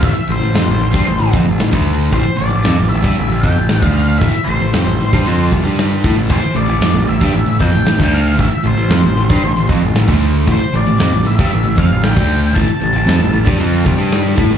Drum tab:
CC |----------------|----------------|----------------|x---------------|
HH |o-o-o-o-o-o-o-o-|o-o-o-o-o-o-o-o-|o-o-o-o-o-o-o-o-|--o-o-o-o-o-o-o-|
SD |----o-------o---|----o-------o-o-|----o-------o---|----o-------o-o-|
BD |o------o--o--o--|o------o--o--o--|o------o--o---o-|o------o--o--o--|

CC |----------------|----------------|----------------|
HH |o-o-o-o-o-o-o-o-|o-o-o-o-o-o-o-o-|o-o-o-o-o-o-o-o-|
SD |----o-------o-o-|----o-------o---|----o-------o---|
BD |o------o--o--o--|o------o--o--o--|o------o--o---o-|